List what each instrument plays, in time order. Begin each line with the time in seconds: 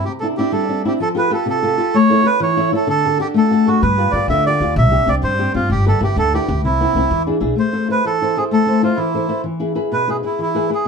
0.05 nylon-string guitar C3, melodica G4
0.20 nylon-string guitar C4 D4 E4, melodica A4
0.37 nylon-string guitar C4 D4 E4, melodica G4
0.52 nylon-string guitar G3, melodica A4
0.68 nylon-string guitar C4 D4 E4
0.85 nylon-string guitar C4 D4 E4, melodica G4
1.00 nylon-string guitar F3, melodica A4
1.15 nylon-string guitar F4 G4 A4, melodica B4
1.30 nylon-string guitar F4 G4 A4, melodica A4
1.46 nylon-string guitar C3, melodica A4
1.62 nylon-string guitar F4 G4 A4
1.78 nylon-string guitar F4 G4 A4
1.94 nylon-string guitar A3, melodica C#5
2.10 nylon-string guitar E4 A4 C#5
2.23 nylon-string guitar E4 A4 C#5, melodica B4
2.40 nylon-string guitar E3, melodica C#5
2.57 nylon-string guitar E4 A4 C#5
2.72 nylon-string guitar E4 A4 C#5, melodica A4
2.87 nylon-string guitar D3, melodica A4
3.05 nylon-string guitar D4 F#4 A4
3.19 nylon-string guitar D4 F#4 A4, melodica G4
3.34 nylon-string guitar A3, melodica A4
3.50 nylon-string guitar D4 F#4 A4
3.67 nylon-string guitar D4 F#4 A4, melodica F#4
3.82 upright bass G2, nylon-string guitar G3, melodica B4
3.98 nylon-string guitar F4 G4 B4
4.11 upright bass G2, nylon-string guitar F4 G4 B4, melodica D5
4.28 upright bass D2, nylon-string guitar D3, melodica E5
4.46 nylon-string guitar F4 G4 B4, melodica D5
4.60 upright bass D2, nylon-string guitar F4 G4 B4
4.76 upright bass C2, nylon-string guitar C3, melodica E5
4.90 nylon-string guitar C4 D4 G4
5.06 upright bass C2, nylon-string guitar C4 D4 G4, melodica D5
5.22 upright bass G2, nylon-string guitar G3, melodica C5
5.39 nylon-string guitar C4 D4 G4
5.54 upright bass G2, nylon-string guitar C4 D4 G4, melodica F4
5.70 upright bass G1, nylon-string guitar G3, melodica G4
5.86 nylon-string guitar E4 G4 B4, melodica A4
6.01 upright bass G1, nylon-string guitar E4 G4 B4, melodica G4
6.16 upright bass D2, nylon-string guitar D3, melodica A4
6.34 nylon-string guitar E4 G4 B4, melodica G4
6.48 upright bass D2, nylon-string guitar E4 G4 B4
6.64 upright bass C2, nylon-string guitar C3, melodica E4
6.80 nylon-string guitar B3 C4 E4
6.95 upright bass C2, nylon-string guitar B3 C4 E4
7.11 upright bass E2, nylon-string guitar E3
7.27 nylon-string guitar D4 E4 G#4
7.40 upright bass B1, nylon-string guitar D4 E4 G#4
7.56 nylon-string guitar A3, melodica C5
7.73 nylon-string guitar E4 A4 C5
7.88 nylon-string guitar E4 A4 C5, melodica B4
8.05 nylon-string guitar E3, melodica A4
8.21 nylon-string guitar E4 A4 C5
8.37 nylon-string guitar E4 A4 C5, melodica G#4
8.51 nylon-string guitar A3, melodica A4
8.66 nylon-string guitar E4 A4 C5
8.83 nylon-string guitar E4 A4 C5, melodica F4
8.96 nylon-string guitar E3, melodica E4
9.14 nylon-string guitar E4 A4 C5
9.28 nylon-string guitar E4 A4 C5
9.44 nylon-string guitar E3
9.60 nylon-string guitar E4 G#4 B4
9.75 nylon-string guitar E4 G#4 B4
9.92 nylon-string guitar B2, melodica B4
10.08 nylon-string guitar E4 G#4 B4, melodica G#4
10.23 nylon-string guitar E4 G#4 B4, melodica E4
10.39 nylon-string guitar E3, melodica E4
10.55 nylon-string guitar E4 G#4 B4
10.69 nylon-string guitar E4 G#4 B4
10.75 melodica G#4